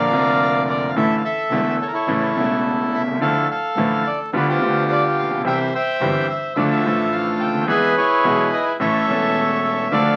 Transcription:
Already playing: bandoneon D5 F5
0.00 bandoneon A#4
0.11 double bass F1, grand piano F1 F2 D3 F3 A#3 F4
0.69 bandoneon D5
0.88 bandoneon F5
0.94 double bass A1, grand piano A1 A2 D3 E3 A3 E4, bandoneon A4 E5
1.17 bandoneon F5
1.24 bandoneon A4 E5
1.50 double bass E1, grand piano E1 E2 D3 E3 A3 E4
1.82 bandoneon C#5
1.87 bandoneon A#4
1.93 bandoneon E4 A4 C#5
2.07 double bass A1, grand piano A1 A2 C#3 E3 A3 E4
2.35 double bass E1, grand piano E1 E2 C#3 E3 A3
2.39 grand piano E4
2.92 double bass C2, bandoneon E5
3.00 grand piano B1
3.08 grand piano C2
3.14 grand piano C#2
3.21 double bass D2, grand piano D2 D3 F3 A3 E4, bandoneon A4 F5
3.51 bandoneon A4 F5
3.76 double bass A1, grand piano A1 A2 D3 F3 A3 E4
4.07 bandoneon D5
4.33 double bass D2, grand piano D2 D3 G3 B3 F4, bandoneon F4 G4 B4
4.49 bandoneon F4 G4 C5
4.60 double bass D2, grand piano D2 D3 G3 B3 F4
4.91 bandoneon D5
5.18 double bass A#1, bandoneon F5
5.23 grand piano A1
5.30 grand piano A#1
5.38 grand piano B1
5.44 grand piano C2 C3 E3 G3 C4 G4, double bass C2, bandoneon C5 E5 G5
5.75 bandoneon C5 E5 G5
6.01 double bass G1, grand piano G1 G2 E3 G3 C4 G4
6.30 bandoneon E5
6.55 double bass D2, grand piano D2 D3 F3 A3 D4 A4, bandoneon F4 A4 D5 E5
6.71 bandoneon A4 E5
6.84 double bass A1, grand piano A1 A2 F3 A3 D4
6.88 grand piano A4
7.12 bandoneon F5
7.40 double bass D2, bandoneon G5
7.47 grand piano C#2
7.54 grand piano D2
7.61 grand piano D#2
7.67 double bass E2, grand piano E2 E3 G#3 B3 G#4, bandoneon G#4 B4 E5
7.97 bandoneon E4 G#4 C#5
8.24 double bass B1, grand piano B1 B2 E3 G#3 B3 G#4
8.53 bandoneon D#5
8.80 grand piano A1 A2 E3 A3 C#4 A4, double bass A1, bandoneon A4 C#5 E5
9.07 double bass E1, grand piano E1 E2 E3 A3 C#4
9.11 grand piano A4
9.64 bandoneon E5
9.92 grand piano D2 D3 F3 A3 D4 A4, double bass D2, bandoneon A4 D5 F5

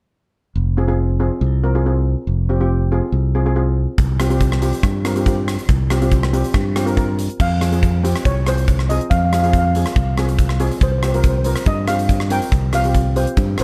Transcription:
0.55 fingered electric bass F1
0.77 steel pan C4 F4 G#4
0.88 steel pan C4 F4 G#4
1.20 steel pan C4 F4 G#4
1.41 fingered electric bass C2
1.64 steel pan C4 F4 A#4
1.75 steel pan C4 F4 G#4
1.86 steel pan C4 F4 G#4
2.27 fingered electric bass F1
2.49 steel pan C4 F4 G4
2.60 steel pan C4 F4 G4
2.92 steel pan C4 F4 G#4
3.12 fingered electric bass C2
3.35 steel pan C4 F4 G#4
3.46 steel pan C4 F4 G#4
3.56 steel pan C4 F4 G#4
3.98 fingered electric bass C2, kick, closed hi-hat
4.20 steel pan C4 F4 G4, cross-stick, closed hi-hat
4.30 steel pan C4 F4 G4, closed hi-hat
4.40 kick, closed hi-hat
4.52 cross-stick
4.62 steel pan C4 F4 G4, closed hi-hat
4.73 closed hi-hat
4.83 fingered electric bass G2, kick, cross-stick, closed hi-hat
5.05 steel pan C4 F4 A#4, cross-stick, closed hi-hat
5.16 steel pan C4 F4 G4, closed hi-hat
5.26 steel pan C4 F4 G4, kick, closed hi-hat
5.48 cross-stick, closed hi-hat
5.59 closed hi-hat
5.69 fingered electric bass C2, kick, closed hi-hat
5.90 steel pan C4 F4 G4, cross-stick, closed hi-hat
6.01 steel pan C4 F4 G4, closed hi-hat
6.12 kick, closed hi-hat
6.23 cross-stick
6.33 steel pan C4 F4 G4, closed hi-hat
6.44 closed hi-hat
6.54 fingered electric bass G2, kick, cross-stick, closed hi-hat
6.76 steel pan C4 F4 G4, cross-stick, closed hi-hat
6.86 steel pan C4 F4 A#4, closed hi-hat
6.97 steel pan C4 F4 A#4, kick, closed hi-hat
7.19 closed hi-hat
7.30 closed hi-hat
7.40 fingered electric bass F2, steel pan F5, kick, crash
7.61 steel pan C4 F4 G#4, cross-stick, closed hi-hat
7.72 steel pan C4 F4 G#4, closed hi-hat
7.83 kick, closed hi-hat
8.03 steel pan C4 F4 G4, closed hi-hat
8.16 cross-stick, closed hi-hat
8.25 fingered electric bass C2, steel pan C#5, kick, closed hi-hat
8.46 steel pan C4 F4 G#4 C5, cross-stick, closed hi-hat
8.58 closed hi-hat
8.68 kick, closed hi-hat
8.79 cross-stick
8.89 steel pan C4 F4 G#4 D#5, closed hi-hat
9.01 closed hi-hat
9.10 fingered electric bass F2, steel pan F5, kick, closed hi-hat
9.18 steel pan F5
9.25 steel pan F5
9.33 steel pan C4 F4 G#4 F5, cross-stick, closed hi-hat
9.42 steel pan C4 F4 G#4 F5, closed hi-hat
9.50 steel pan F5, kick, closed hi-hat
9.58 steel pan F5
9.65 steel pan F5
9.75 steel pan C4 F4 G#4, closed hi-hat
9.86 cross-stick, closed hi-hat
9.96 fingered electric bass C2, kick, closed hi-hat
10.18 steel pan C4 F4 G#4, cross-stick, closed hi-hat
10.29 closed hi-hat
10.39 kick, closed hi-hat
10.49 cross-stick
10.60 steel pan C4 F4 G#4, closed hi-hat
10.71 closed hi-hat
10.81 fingered electric bass C2, steel pan C5, kick, closed hi-hat
10.92 steel pan C5
10.98 steel pan C5
11.03 steel pan C4 F4 G4, cross-stick, closed hi-hat
11.08 steel pan C5
11.14 steel pan C4 F4 A#4 C5, closed hi-hat
11.23 kick, closed hi-hat
11.29 steel pan C5
11.38 steel pan C5
11.44 steel pan C4 F4 A#4 C5, closed hi-hat
11.50 steel pan C5
11.56 cross-stick, closed hi-hat
11.66 fingered electric bass G2, steel pan D#5, kick, closed hi-hat
11.88 steel pan C4 F4 G4 F5, cross-stick, closed hi-hat
11.99 closed hi-hat
12.09 kick, closed hi-hat
12.20 cross-stick
12.30 steel pan C4 F4 A#4 G5, closed hi-hat
12.42 closed hi-hat
12.52 fingered electric bass C2, kick, closed hi-hat
12.73 steel pan C4 F4 G4 F5, cross-stick, closed hi-hat
12.84 steel pan C4 F4 G4, closed hi-hat
12.94 kick, closed hi-hat
13.16 steel pan C4 F4 G4 C5, closed hi-hat
13.27 closed hi-hat
13.37 fingered electric bass G2, kick, closed hi-hat
13.58 fingered electric bass A#1, steel pan C4 F4 A#4 C5, cross-stick, closed hi-hat

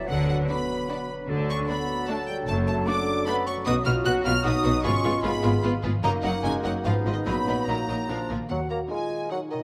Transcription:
Already playing: bassoon F#3, harp F#3 B3 B4 D5 B5 D6
0.07 double bass section D2, cello section D3, harp D3, french horn section F#3, clarinet B4, flute F#5, violin section F#5
0.19 harp B3
0.27 french horn section F#3, harp F#4, violin section F#5, flute F#5
0.39 harp D5
0.47 french horn section B3, viola section B3 D4, violin section F#4 D5 B5, harp B4
0.51 flute B5
0.60 harp F#5
0.70 harp D6
0.89 viola section B3 D4, violin section F#4 D5, harp D5
1.00 harp F#4
1.10 harp B3
1.20 harp D4
1.28 double bass section D2, cello section D3, harp D3, bassoon F#3, clarinet A4
1.40 harp A3
1.48 french horn section C#4, harp F#4, violin section C#6, flute C#6
1.60 harp D5
1.68 viola section A3 D4, french horn section B3, violin section F#4 D5 B5, flute B5
1.80 harp F#5
1.90 harp D6
1.99 harp F#5
2.08 french horn section A3, viola section A3 D4, violin section F#4 D5 A5, harp D5, flute A5
2.19 harp F#4
2.28 french horn section G3, harp A3, flute G5, violin section G5
2.39 harp D4
2.47 double bass section F#1, cello section F#2, harp F#2, french horn section A3, violin section A5, flute A5
2.58 harp A3
2.67 french horn section A3, harp F#4, violin section A5, flute A5
2.78 harp D5
2.86 viola section A3 D4, french horn section D4, violin section F#4 D5 D6, harp A4, flute D6
2.97 harp F#5
3.07 harp D6
3.17 harp F#5
3.26 viola section A3 D4, french horn section B3, violin section F#4 D5 B5, harp D5, flute B5
3.37 harp F#4
3.46 harp A3, french horn section C#4, flute C#6, violin section C#6
3.57 harp F#3
3.65 double bass section B1, harp B2, cello section B2, bassoon F#3, viola section B3 F#4, french horn section D#4, violin section F#4 B4 D#6, clarinet F#4, flute D#6
3.77 harp F#3
3.85 double bass section B1, cello section B2, viola section B3 F#4, french horn section F4, violin section F#4 B4 F6, harp F#4, flute F6
4.04 double bass section B1, cello section B2, viola section B3 F#4, french horn section F#4, violin section F#4 B4 F#6, harp F#4, flute F#6
4.16 harp F#5
4.24 double bass section B1, cello section B2, viola section B3 F#4, french horn section F4, violin section F#4 B4 F6, harp B5, flute F6
4.44 double bass section B1, cello section B2, viola section B3 F#4, french horn section D#4, violin section F#4 B4 D#6, harp B4, flute D#6
4.55 harp F#4
4.63 double bass section B1, cello section B2, harp F#3, viola section B3 F#4, violin section F#4 B4
4.75 harp B3
4.84 double bass section G#1, harp G#2, cello section G#2, bassoon G#3, viola section B3 F4, french horn section C#4, clarinet F4, violin section G#4 B4 C#6, flute C#6
4.94 harp G#3
5.04 double bass section G#1, cello section G#2, viola section B3 F4, harp F4, violin section G#4 B4
5.15 harp B4
5.23 double bass section G#1, cello section G#2, french horn section B3, viola section B3 F4, violin section G#4 B4 B5, harp G#4, flute B5
5.34 harp F5
5.43 double bass section G#1, cello section G#2, viola section B3 F4, violin section G#4 B4, harp B5
5.55 harp F5
5.63 double bass section G#1, cello section G#2, viola section B3 F4, violin section G#4 B4, harp B4
5.75 harp F4
5.83 double bass section G#1, cello section G#2, harp G#3, viola section B3 F4, violin section G#4 B4
5.95 harp F3
6.03 double bass section F#1, cello section F#2, harp F#2, viola section F#3 D#4, bassoon A#3, french horn section A#3, clarinet D#4, violin section A#4 D#5 A#5, flute A#5
6.14 harp A#3
6.22 double bass section F#1, cello section F#2, french horn section F#3, viola section F#3 D#4, harp F#4, violin section A#4 D#5 F#5, flute F#5
6.35 harp D#5
6.42 double bass section F#1, cello section F#2, viola section F#3 D#4, french horn section G#3, violin section A#4 D#5 G#5, harp A#4, flute G#5
6.55 harp F#5
6.64 double bass section F#1, cello section F#2, french horn section F#3, viola section F#3 D#4, violin section A#4 D#5 F#5, flute F#5, harp D#6
6.74 harp F#5
6.85 double bass section G#1, cello section G#2, harp G#2, french horn section F3, viola section F3 F4, bassoon B3, violin section B4 D#5 F5, flute F5
6.96 harp B3
7.05 double bass section G#1, cello section G#2, viola section F3 F4, harp F4, violin section B4 D#5
7.12 french horn section D#3, flute D#5, violin section D#5
7.16 harp D#5
7.26 double bass section A#1, cello section A#2, harp A#2, bassoon F#3, viola section F#3 D#4, french horn section B3, violin section A#4 D#5 B5, flute B5
7.37 harp A#3
7.47 double bass section A#1, cello section A#2, viola section F#3 D#4, harp F#4, violin section A#4 D#5
7.68 double bass section A#1, cello section A#2, viola section F#3 D#4, french horn section A#3, harp A#4, violin section A#4 D#5 A#5, flute A#5
7.78 harp F#5
7.89 double bass section A#1, cello section A#2, viola section F#3 D#4, violin section A#4 D#5, harp D#6
8.00 harp F#5
8.09 double bass section A#1, harp A#2, cello section A#2, viola section F3 F4, bassoon F3, clarinet D4, violin section A#4 D5
8.20 harp A#3
8.29 double bass section A#1, cello section A#2, viola section F3 F4, harp F4, violin section A#4 D5
8.33 harp D#3
8.38 harp A#3 D5
8.42 harp D#4
8.47 cello section D#2, french horn section F#4, harp D#5, violin section F#5
8.51 double bass section D#2, bassoon F#3, flute F#5
8.70 bassoon A#3, violin section A#5, flute A#5
8.90 bassoon G#3, viola section D#4 A#4, french horn section F4, violin section A#4 G#5, flute G#5
9.31 bassoon F#3, french horn section D#4, viola section D#4 A#4, violin section A#4 F#5, flute F#5
9.51 harp B2, bassoon D#3, violin section D#5, flute D#5
9.58 harp B3

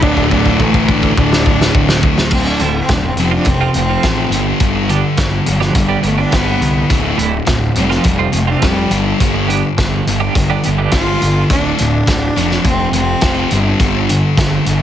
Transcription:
0.02 picked electric bass D1, distorted electric guitar D2 A2 D3, cello D4, kick
0.17 kick
0.31 picked electric bass D1, cello D4, kick
0.45 kick
0.59 picked electric bass A1, cello A3, kick
0.74 kick
0.89 cello D4, kick
1.03 kick
1.17 picked electric bass D1, cello D4, kick
1.33 snare
1.46 kick
1.61 snare
1.74 picked electric bass D1, kick
1.89 snare
2.03 picked electric bass D1, kick
2.18 snare
2.31 picked electric bass D1, distorted electric guitar D2 A2 D3, cello C4, kick, crash
2.46 cello D4, muted clean electric guitar stroke
2.59 picked electric bass D1, distorted electric guitar D2 A2, clean electric guitar A2 D3 A3 E4, cello C4, closed hi-hat
2.78 cello C4
2.89 picked electric bass E1, distorted electric guitar D2 A2, muted clean electric guitar stroke, kick, snare, closed hi-hat
2.93 cello D4
3.07 cello C4
3.15 picked electric bass F1, closed hi-hat
3.19 distorted electric guitar F2 C3 F3, cello C4
3.31 clean electric guitar F3 A3 C4 F4, cello D4
3.45 picked electric bass F1, distorted electric guitar F2 C3, cello C4, muted clean electric guitar stroke, kick, closed hi-hat
3.61 clean electric guitar F3 A3 C4 F4
3.74 picked electric bass F1, distorted electric guitar F2 C3, cello C4, closed hi-hat
3.89 clean electric guitar F3 A3 C4 F4
4.03 picked electric bass A1, distorted electric guitar F2 C3 F3, kick, snare, closed hi-hat
4.19 muted clean electric guitar stroke
4.30 picked electric bass G1, closed hi-hat
4.34 distorted electric guitar G2 D3 G3
4.60 picked electric bass G1, distorted electric guitar G2 D3 G3, kick, closed hi-hat
4.76 muted clean electric guitar stroke
4.89 distorted electric guitar G2 D3, clean electric guitar G3 B3 D4 G4, closed hi-hat
5.17 picked electric bass G1, distorted electric guitar G2 D3, muted clean electric guitar stroke, kick, snare, closed hi-hat
5.46 picked electric bass G1, distorted electric guitar G2 D3, cello G3, closed hi-hat
5.60 cello F3, clean electric guitar G3 B3 D4 G4, snare
5.74 picked electric bass G1, distorted electric guitar G2 D3, cello G3, muted clean electric guitar stroke, kick, closed hi-hat
5.89 clean electric guitar G3 B3 D4 G4
6.03 picked electric bass G1, distorted electric guitar G2 D3, closed hi-hat
6.07 cello A3
6.18 clean electric guitar G3 B3 D4 G4, cello D4
6.31 picked electric bass G1, distorted electric guitar G2 D3 G3, kick, snare, closed hi-hat
6.36 cello B3
6.46 muted clean electric guitar stroke
6.61 picked electric bass C2, distorted electric guitar G2 D3, closed hi-hat
6.90 picked electric bass D1, distorted electric guitar D2 A2 D3, kick, closed hi-hat
7.03 muted clean electric guitar stroke
7.17 picked electric bass D1, distorted electric guitar D2 A2, clean electric guitar A2 D3 A3 E4, closed hi-hat
7.46 picked electric bass D1, distorted electric guitar D2 A2, muted clean electric guitar stroke, kick, snare, closed hi-hat
7.75 picked electric bass F1, distorted electric guitar F2 C3 F3, cello G3, closed hi-hat
7.90 clean electric guitar F3 A3 C4 F4, cello F3, snare
8.04 picked electric bass F1, distorted electric guitar F2 C3, muted clean electric guitar stroke, kick, closed hi-hat
8.08 cello G3
8.19 clean electric guitar F3 A3 C4 F4
8.32 picked electric bass F1, distorted electric guitar F2 C3, cello A3, closed hi-hat
8.47 clean electric guitar F3 A3 C4 F4, cello D4
8.62 picked electric bass F1, distorted electric guitar F2 C3 F3, cello G3, kick, snare, closed hi-hat
8.76 muted clean electric guitar stroke
8.91 picked electric bass G1, distorted electric guitar G2 D3 G3, closed hi-hat
9.20 picked electric bass G1, distorted electric guitar G2 D3 G3, kick, closed hi-hat
9.34 muted clean electric guitar stroke
9.48 distorted electric guitar G2 D3, clean electric guitar G3 B3 D4 G4, closed hi-hat
9.77 picked electric bass G1, distorted electric guitar G2 D3, muted clean electric guitar stroke, kick, snare, closed hi-hat
10.07 picked electric bass G1, distorted electric guitar G2 D3, closed hi-hat
10.20 clean electric guitar G3 B3 D4 G4
10.35 picked electric bass G1, distorted electric guitar G2 D3, muted clean electric guitar stroke, kick, closed hi-hat
10.50 clean electric guitar G3 B3 D4 G4
10.63 picked electric bass G1, distorted electric guitar G2 D3, closed hi-hat
10.78 clean electric guitar G3 B3 D4 G4
10.91 picked electric bass G1, distorted electric guitar G2 D3 G3, cello F4, kick, snare, closed hi-hat
11.07 muted clean electric guitar stroke
11.21 picked electric bass G1, distorted electric guitar G2 D3, closed hi-hat
11.50 picked electric bass D1, distorted electric guitar D2 A2 D3, cello D4, kick, closed hi-hat
11.78 picked electric bass D1, distorted electric guitar D2 A2, cello D4, closed hi-hat
12.07 picked electric bass D1, distorted electric guitar D2 A2, kick, snare, closed hi-hat
12.36 picked electric bass F1, distorted electric guitar F2 C3 F3, closed hi-hat
12.51 snare
12.64 picked electric bass F1, distorted electric guitar F2 C3, cello C4, kick, closed hi-hat
12.92 picked electric bass F1, distorted electric guitar F2, closed hi-hat
12.96 distorted electric guitar C3, cello C4
13.21 picked electric bass F1, distorted electric guitar F2 C3 F3, kick, snare, closed hi-hat
13.51 picked electric bass G1, distorted electric guitar G2 D3 G3, closed hi-hat
13.80 picked electric bass G1, distorted electric guitar G2 D3 G3, kick, closed hi-hat
14.09 distorted electric guitar G2 D3, closed hi-hat
14.37 picked electric bass G1, distorted electric guitar G2 D3, kick, snare, closed hi-hat
14.65 picked electric bass G1, distorted electric guitar G2 D3, closed hi-hat

